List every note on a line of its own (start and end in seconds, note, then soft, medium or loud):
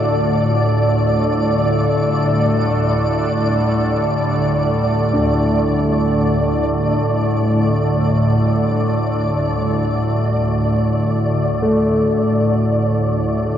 0.00 13.58 D2 medium
0.00 13.58 A2 medium
0.00 13.58 D3 medium
0.00 13.58 G3 medium
0.00 13.58 D4 medium
0.00 13.58 A4 medium
0.00 1.22 D5 medium
0.00 13.58 D5 medium
0.00 2.18 F5 medium
5.14 12.22 D2 soft
11.62 13.58 A3 medium